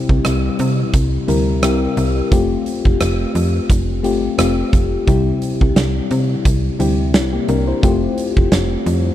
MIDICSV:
0, 0, Header, 1, 4, 480
1, 0, Start_track
1, 0, Tempo, 689655
1, 1612, Time_signature, 4, 2, 24, 8
1, 6365, End_track
2, 0, Start_track
2, 0, Title_t, "FM electric piano"
2, 0, Program_c, 0, 5
2, 0, Control_c, 0, 64, 127
2, 0, Note_on_c, 0, 48, 69
2, 0, Note_on_c, 0, 55, 83
2, 0, Note_on_c, 0, 60, 77
2, 0, Note_on_c, 0, 64, 75
2, 0, Note_on_c, 0, 67, 88
2, 385, Note_off_c, 0, 48, 0
2, 591, Note_off_c, 0, 55, 0
2, 592, Note_off_c, 0, 60, 0
2, 594, Note_off_c, 0, 64, 0
2, 595, Note_off_c, 0, 67, 0
2, 887, Note_on_c, 0, 55, 69
2, 889, Note_on_c, 0, 60, 62
2, 894, Note_on_c, 0, 64, 68
2, 895, Note_on_c, 0, 70, 78
2, 1115, Note_off_c, 0, 55, 0
2, 1116, Note_off_c, 0, 60, 0
2, 1119, Note_off_c, 0, 64, 0
2, 1119, Note_off_c, 0, 70, 0
2, 1129, Note_on_c, 0, 55, 74
2, 1132, Note_on_c, 0, 60, 70
2, 1135, Note_on_c, 0, 64, 67
2, 1139, Note_on_c, 0, 67, 81
2, 1581, Note_off_c, 0, 55, 0
2, 1583, Note_off_c, 0, 60, 0
2, 1584, Note_off_c, 0, 64, 0
2, 1586, Note_off_c, 0, 67, 0
2, 1610, Note_on_c, 0, 57, 81
2, 1612, Note_on_c, 0, 60, 70
2, 1615, Note_on_c, 0, 65, 73
2, 1618, Note_on_c, 0, 67, 88
2, 1620, Control_c, 0, 64, 0
2, 1736, Control_c, 0, 64, 127
2, 2513, Note_off_c, 0, 57, 0
2, 2514, Note_off_c, 0, 60, 0
2, 2515, Note_off_c, 0, 65, 0
2, 2516, Note_off_c, 0, 67, 0
2, 2805, Note_on_c, 0, 57, 70
2, 2809, Note_on_c, 0, 60, 62
2, 2811, Note_on_c, 0, 65, 64
2, 2813, Note_on_c, 0, 67, 81
2, 3034, Note_off_c, 0, 57, 0
2, 3036, Note_off_c, 0, 60, 0
2, 3037, Note_off_c, 0, 65, 0
2, 3038, Note_off_c, 0, 67, 0
2, 3047, Note_on_c, 0, 57, 72
2, 3051, Note_on_c, 0, 60, 70
2, 3054, Note_on_c, 0, 65, 68
2, 3056, Note_on_c, 0, 67, 82
2, 3500, Note_off_c, 0, 57, 0
2, 3502, Note_off_c, 0, 60, 0
2, 3504, Note_off_c, 0, 65, 0
2, 3505, Note_off_c, 0, 67, 0
2, 3528, Note_on_c, 0, 55, 79
2, 3531, Note_on_c, 0, 60, 69
2, 3533, Note_on_c, 0, 48, 68
2, 3533, Note_on_c, 0, 64, 75
2, 3538, Note_on_c, 0, 67, 82
2, 3542, Control_c, 0, 64, 0
2, 3651, Control_c, 0, 64, 127
2, 4225, Note_off_c, 0, 48, 0
2, 4432, Note_off_c, 0, 55, 0
2, 4433, Note_off_c, 0, 60, 0
2, 4434, Note_off_c, 0, 64, 0
2, 4436, Note_off_c, 0, 67, 0
2, 4726, Note_on_c, 0, 55, 74
2, 4728, Note_on_c, 0, 60, 64
2, 4732, Note_on_c, 0, 64, 68
2, 4734, Note_on_c, 0, 67, 75
2, 4955, Note_off_c, 0, 55, 0
2, 4956, Note_off_c, 0, 60, 0
2, 4957, Note_off_c, 0, 64, 0
2, 4959, Note_off_c, 0, 67, 0
2, 4969, Note_on_c, 0, 64, 57
2, 4973, Note_on_c, 0, 55, 48
2, 5096, Note_off_c, 0, 64, 0
2, 5098, Note_off_c, 0, 55, 0
2, 5099, Note_on_c, 0, 67, 64
2, 5105, Note_on_c, 0, 58, 53
2, 5204, Note_off_c, 0, 67, 0
2, 5207, Note_off_c, 0, 58, 0
2, 5211, Note_on_c, 0, 70, 70
2, 5214, Note_on_c, 0, 62, 59
2, 5337, Note_off_c, 0, 70, 0
2, 5338, Note_off_c, 0, 62, 0
2, 5341, Note_on_c, 0, 72, 59
2, 5345, Note_on_c, 0, 64, 52
2, 5445, Note_on_c, 0, 57, 79
2, 5447, Note_on_c, 0, 60, 76
2, 5450, Note_on_c, 0, 65, 74
2, 5454, Note_on_c, 0, 67, 89
2, 5462, Control_c, 0, 64, 0
2, 5565, Control_c, 0, 64, 127
2, 5570, Note_off_c, 0, 72, 0
2, 5573, Note_off_c, 0, 64, 0
2, 6350, Note_off_c, 0, 57, 0
2, 6351, Note_off_c, 0, 60, 0
2, 6353, Note_off_c, 0, 65, 0
2, 6354, Note_off_c, 0, 67, 0
2, 6365, End_track
3, 0, Start_track
3, 0, Title_t, "FM bass"
3, 0, Program_c, 1, 39
3, 65, Note_on_c, 1, 36, 100
3, 142, Note_off_c, 1, 36, 0
3, 174, Note_on_c, 1, 36, 102
3, 346, Note_off_c, 1, 36, 0
3, 415, Note_on_c, 1, 48, 102
3, 587, Note_off_c, 1, 48, 0
3, 651, Note_on_c, 1, 36, 100
3, 824, Note_off_c, 1, 36, 0
3, 893, Note_on_c, 1, 38, 80
3, 1132, Note_on_c, 1, 36, 102
3, 1143, Note_off_c, 1, 38, 0
3, 1305, Note_off_c, 1, 36, 0
3, 1372, Note_on_c, 1, 36, 98
3, 1545, Note_off_c, 1, 36, 0
3, 1614, Note_on_c, 1, 29, 102
3, 1786, Note_off_c, 1, 29, 0
3, 1984, Note_on_c, 1, 29, 95
3, 2062, Note_off_c, 1, 29, 0
3, 2093, Note_on_c, 1, 29, 101
3, 2265, Note_off_c, 1, 29, 0
3, 2333, Note_on_c, 1, 41, 96
3, 2505, Note_off_c, 1, 41, 0
3, 2573, Note_on_c, 1, 29, 111
3, 2813, Note_on_c, 1, 31, 83
3, 2823, Note_off_c, 1, 29, 0
3, 2985, Note_off_c, 1, 31, 0
3, 3051, Note_on_c, 1, 29, 101
3, 3224, Note_off_c, 1, 29, 0
3, 3292, Note_on_c, 1, 29, 89
3, 3465, Note_off_c, 1, 29, 0
3, 3532, Note_on_c, 1, 36, 105
3, 3705, Note_off_c, 1, 36, 0
3, 3906, Note_on_c, 1, 36, 98
3, 3983, Note_off_c, 1, 36, 0
3, 4009, Note_on_c, 1, 36, 102
3, 4183, Note_off_c, 1, 36, 0
3, 4253, Note_on_c, 1, 48, 97
3, 4425, Note_off_c, 1, 48, 0
3, 4491, Note_on_c, 1, 36, 100
3, 4664, Note_off_c, 1, 36, 0
3, 4731, Note_on_c, 1, 38, 84
3, 4972, Note_on_c, 1, 36, 102
3, 4982, Note_off_c, 1, 38, 0
3, 5145, Note_off_c, 1, 36, 0
3, 5210, Note_on_c, 1, 36, 97
3, 5384, Note_off_c, 1, 36, 0
3, 5451, Note_on_c, 1, 29, 108
3, 5624, Note_off_c, 1, 29, 0
3, 5823, Note_on_c, 1, 29, 90
3, 5901, Note_off_c, 1, 29, 0
3, 5928, Note_on_c, 1, 29, 105
3, 6103, Note_off_c, 1, 29, 0
3, 6168, Note_on_c, 1, 41, 96
3, 6342, Note_off_c, 1, 41, 0
3, 6365, End_track
4, 0, Start_track
4, 0, Title_t, "Drums"
4, 65, Note_on_c, 9, 36, 79
4, 134, Note_off_c, 9, 36, 0
4, 171, Note_on_c, 9, 42, 89
4, 172, Note_on_c, 9, 37, 99
4, 241, Note_off_c, 9, 42, 0
4, 242, Note_off_c, 9, 37, 0
4, 411, Note_on_c, 9, 42, 67
4, 481, Note_off_c, 9, 42, 0
4, 651, Note_on_c, 9, 42, 85
4, 652, Note_on_c, 9, 36, 84
4, 721, Note_off_c, 9, 36, 0
4, 721, Note_off_c, 9, 42, 0
4, 893, Note_on_c, 9, 42, 70
4, 963, Note_off_c, 9, 42, 0
4, 1132, Note_on_c, 9, 42, 89
4, 1134, Note_on_c, 9, 37, 110
4, 1202, Note_off_c, 9, 42, 0
4, 1203, Note_off_c, 9, 37, 0
4, 1372, Note_on_c, 9, 42, 63
4, 1442, Note_off_c, 9, 42, 0
4, 1613, Note_on_c, 9, 36, 98
4, 1613, Note_on_c, 9, 42, 81
4, 1682, Note_off_c, 9, 42, 0
4, 1683, Note_off_c, 9, 36, 0
4, 1852, Note_on_c, 9, 42, 59
4, 1922, Note_off_c, 9, 42, 0
4, 1986, Note_on_c, 9, 36, 81
4, 2055, Note_off_c, 9, 36, 0
4, 2091, Note_on_c, 9, 42, 84
4, 2092, Note_on_c, 9, 37, 92
4, 2161, Note_off_c, 9, 42, 0
4, 2162, Note_off_c, 9, 37, 0
4, 2333, Note_on_c, 9, 42, 68
4, 2403, Note_off_c, 9, 42, 0
4, 2572, Note_on_c, 9, 36, 89
4, 2573, Note_on_c, 9, 42, 90
4, 2642, Note_off_c, 9, 36, 0
4, 2643, Note_off_c, 9, 42, 0
4, 2814, Note_on_c, 9, 42, 74
4, 2884, Note_off_c, 9, 42, 0
4, 3052, Note_on_c, 9, 42, 94
4, 3054, Note_on_c, 9, 37, 104
4, 3122, Note_off_c, 9, 42, 0
4, 3123, Note_off_c, 9, 37, 0
4, 3292, Note_on_c, 9, 36, 82
4, 3292, Note_on_c, 9, 42, 70
4, 3362, Note_off_c, 9, 36, 0
4, 3362, Note_off_c, 9, 42, 0
4, 3532, Note_on_c, 9, 36, 102
4, 3532, Note_on_c, 9, 42, 76
4, 3602, Note_off_c, 9, 36, 0
4, 3602, Note_off_c, 9, 42, 0
4, 3771, Note_on_c, 9, 42, 61
4, 3841, Note_off_c, 9, 42, 0
4, 3905, Note_on_c, 9, 36, 76
4, 3975, Note_off_c, 9, 36, 0
4, 4010, Note_on_c, 9, 42, 86
4, 4011, Note_on_c, 9, 38, 93
4, 4080, Note_off_c, 9, 42, 0
4, 4081, Note_off_c, 9, 38, 0
4, 4251, Note_on_c, 9, 42, 70
4, 4320, Note_off_c, 9, 42, 0
4, 4491, Note_on_c, 9, 36, 90
4, 4492, Note_on_c, 9, 42, 83
4, 4561, Note_off_c, 9, 36, 0
4, 4561, Note_off_c, 9, 42, 0
4, 4732, Note_on_c, 9, 42, 76
4, 4802, Note_off_c, 9, 42, 0
4, 4970, Note_on_c, 9, 42, 86
4, 4971, Note_on_c, 9, 38, 113
4, 5039, Note_off_c, 9, 42, 0
4, 5041, Note_off_c, 9, 38, 0
4, 5210, Note_on_c, 9, 42, 68
4, 5279, Note_off_c, 9, 42, 0
4, 5451, Note_on_c, 9, 36, 101
4, 5452, Note_on_c, 9, 42, 75
4, 5521, Note_off_c, 9, 36, 0
4, 5521, Note_off_c, 9, 42, 0
4, 5692, Note_on_c, 9, 42, 63
4, 5761, Note_off_c, 9, 42, 0
4, 5824, Note_on_c, 9, 36, 76
4, 5893, Note_off_c, 9, 36, 0
4, 5928, Note_on_c, 9, 42, 83
4, 5929, Note_on_c, 9, 38, 94
4, 5998, Note_off_c, 9, 42, 0
4, 5999, Note_off_c, 9, 38, 0
4, 6170, Note_on_c, 9, 42, 68
4, 6240, Note_off_c, 9, 42, 0
4, 6365, End_track
0, 0, End_of_file